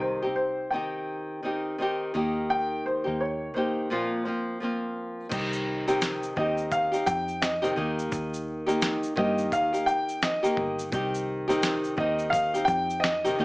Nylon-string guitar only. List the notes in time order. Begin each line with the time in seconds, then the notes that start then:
Already playing: C3 D#3 C4 D#4 G4
0.22 C4 D#4 G4
0.72 D#3 C4 D#4 G4
1.43 D#3 C4 D#4 G4
1.78 D#3 C4 D#4 G4
2.14 D#3 A#3 D#4 G4
3.04 A#3 D#4 G4
3.54 D#3 A#3 D#4 G4
3.90 A#2 F3 A#3 C4 F4
4.25 F3 A#3 C4 F4
4.60 F3 A#3 C4 F4
5.29 D#3 C4 D#4 G4
5.88 C3 D#3 C4 D#4 G4
6.36 D#3 C4 D#4 G4
6.92 C4 D#4 G4
7.62 C3 D#3 C4 D#4 G4
7.76 D#3 A#3 D#4 G4
8.66 D#3 A#3 D#4 G4
9.16 D#3 A#3 D#4 G4
9.73 A#3 D#4 G4
10.43 D#3 A#3 D#4 G4
10.92 D#3 C4 D#4 G4
11.48 C3 D#3 C4 D#4 G4
11.97 D#3 C4 D#4
12.01 G4
12.54 C4 D#4 G4
13.24 C3 D#3 C4 D#4 G4
13.39 D#3 A#3 D#4 G4